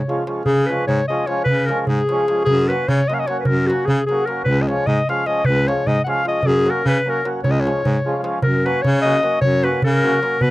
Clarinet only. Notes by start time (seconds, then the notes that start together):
Already playing: C#5
0.45 G#4
0.66 B4
0.87 C#5
1.08 D#5
1.27 C#5
1.44 B4
1.66 A#4
1.81 A#4
1.87 G#4
2.45 G#4
2.68 B4
2.88 C#5
3.08 D#5
3.14 F5
3.19 D#5
3.27 C#5
3.40 B4
3.45 A#4
3.67 F#4
3.85 G#4
4.06 G#4
4.25 A#4
4.44 B4
4.62 D#5
4.68 C#5
4.87 D#5
5.09 F5
5.27 D#5
5.46 B4
5.68 C#5
5.87 D#5
6.04 F#5
6.10 F5
6.28 D#5
6.47 G#4
6.70 A#4
6.88 B4
7.10 A#4
7.44 C#5
7.51 D#5
7.60 C#5
8.43 A#4
8.66 B4
8.82 C#5
9.02 D#5
9.41 C#5
9.64 B4
9.84 A#4
10.42 B4